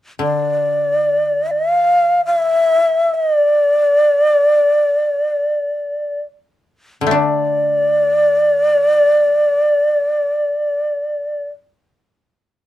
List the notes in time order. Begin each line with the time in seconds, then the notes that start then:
0.19 D3 D5
1.51 F5
2.25 F5
2.37 E5
3.14 D#5
3.36 D5
7.01 D3
7.07 A3 D5
7.11 D4